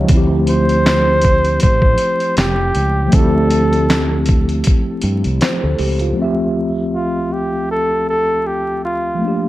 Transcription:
Already playing: F3 A#3 C#4 D#4 G4 C#5 D#5 F5 G5 A5 A#5
0.04 F3 A3
0.08 D2 C4, kick, closed hi-hat
0.14 E4 G4
0.47 C5, closed hi-hat
0.69 closed hi-hat
0.86 snare, clap, closed hi-hat
1.22 kick, closed hi-hat
1.45 closed hi-hat
1.60 A1 C5, kick, closed hi-hat
1.82 kick
1.98 closed hi-hat
2.20 closed hi-hat
2.37 F1 G4, snare, clap, closed hi-hat
2.75 C#2, closed hi-hat
3.06 F3 A3
3.12 D2 C4 A4, kick, closed hi-hat
3.16 E4 G4
3.51 closed hi-hat
3.73 closed hi-hat
3.90 snare, clap, closed hi-hat
4.26 kick, closed hi-hat
4.49 closed hi-hat
4.64 kick, closed hi-hat
5.02 G2, closed hi-hat
5.24 C2, closed hi-hat
5.41 C5, snare, clap, closed hi-hat
5.63 D2 A4
5.79 C#2 G4, open hi-hat
5.99 F4, closed hi-hat
6.11 D2 F3
6.16 A3 C4
6.22 G4 E5
6.95 F4
7.33 G4
7.71 A4
8.09 A4
8.47 G4
8.85 F4
9.15 F3 A3
9.21 A#3 D4
9.28 G4

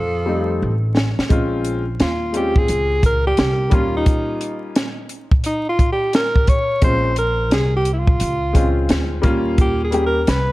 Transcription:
Already playing: F2 F3 A4
0.25 G3 A3 C4 D#4
0.62 A1
0.97 snare
1.18 muted upright bass stroke, snare
1.29 A#1 G#3 C4 C#4 F4, kick, closed hi-hat
1.65 closed hi-hat
2.00 D#2 F4, snare, closed hi-hat
2.32 G#3 C4 C#4 F4, closed hi-hat
2.37 G4
2.56 G#4, kick
2.68 C#2, closed hi-hat
3.03 A#4, kick, closed hi-hat
3.27 G4
3.37 C2, snare, closed hi-hat
3.70 D#2 G3 A#3 C#4 F4, kick, closed hi-hat
3.74 F4
3.97 D#4
4.06 kick, closed hi-hat
4.41 closed hi-hat
4.76 snare, closed hi-hat
5.09 closed hi-hat
5.32 kick
5.44 D#4, closed hi-hat
5.69 F4
5.79 kick, closed hi-hat
5.92 G4
6.13 A#4, snare, closed hi-hat
6.36 kick
6.47 C#5, kick, closed hi-hat
6.81 A#1 G#3 C4 C#4 F4 C5, kick, closed hi-hat
7.16 A#4, closed hi-hat
7.51 C2 G#4, snare, closed hi-hat
7.76 G4
7.85 closed hi-hat
7.93 E4
7.99 F4
8.07 kick
8.20 C#2, closed hi-hat
8.53 G#3 C4 C#4 F4, kick, closed hi-hat
8.89 D2, snare, closed hi-hat
9.22 D#2 G3 A#3 C#4 F4, kick, closed hi-hat
9.58 G4, kick, closed hi-hat
9.84 G#4
9.91 G3 A#3 C#4 G4, closed hi-hat
10.06 A#4
10.24 A#4, closed hi-hat
10.28 C2 B4, snare

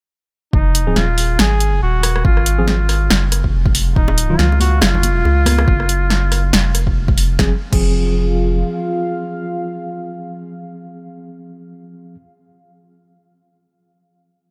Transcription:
0.53 F1 D#4, kick
0.75 closed hi-hat
0.87 F3 C4 G#4
0.96 D#1 F4, snare
1.18 open hi-hat
1.39 G#1 G#4, snare
1.60 closed hi-hat
1.82 D#1 F#4
2.03 cross-stick, open hi-hat
2.16 cross-stick
2.25 G#1 F4, kick
2.37 cross-stick
2.46 closed hi-hat
2.58 F3 C4 G#4
2.68 F4, snare
2.89 cross-stick, open hi-hat
3.10 F#1, snare
3.32 cross-stick, closed hi-hat
3.44 kick
3.53 F1
3.66 kick
3.75 open hi-hat
3.96 D#1 D#4 F4 F5, kick
4.08 high bongo
4.18 closed hi-hat
4.30 D#3 F#3 F4
4.39 C#2 F4, snare
4.52 high bongo
4.60 F#4, open hi-hat, high conga
4.81 F#1 F4, snare, high bongo
4.95 low conga
5.03 closed hi-hat, high conga
5.25 C#2, high bongo
5.46 cross-stick, open hi-hat, high conga
5.58 cross-stick, high bongo
5.68 F#1, kick
5.80 cross-stick
5.89 closed hi-hat
6.10 snare
6.32 cross-stick, open hi-hat
6.53 F1, snare
6.75 cross-stick, closed hi-hat
6.87 kick
7.08 kick
7.18 open hi-hat
7.39 F1 F3 C4 F4 G#4 F5, kick, snare
7.72 F1 F3 C4 G#4, kick, crash

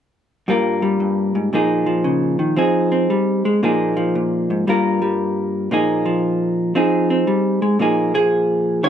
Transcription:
0.48 G2 G3 A#3 F4 A#4
0.82 G3
1.00 G2
1.35 G#2
1.53 A#2 F3 A#3 D#4 G#4
1.86 F3
2.04 C#3
2.39 D#3
2.56 F3 C4 D#4 G#4
2.92 C4
3.10 G3
3.45 G#3
3.63 A#2 F3 A#3 D#4 G#4
3.97 F3
4.15 A#2
4.50 G#2
4.67 G2 G3 A#3 F4 A#4
5.02 G3
5.71 A#2 F3 A#3 D#4 G#4
6.06 F3
6.75 F3 C4 D#4 G#4
7.10 C4
7.27 G3
7.62 G#3
7.79 A#2 F3 A#3 D#4 G#4
8.14 F3 G#4
8.83 D#3 G3 C#4 F4 C#5

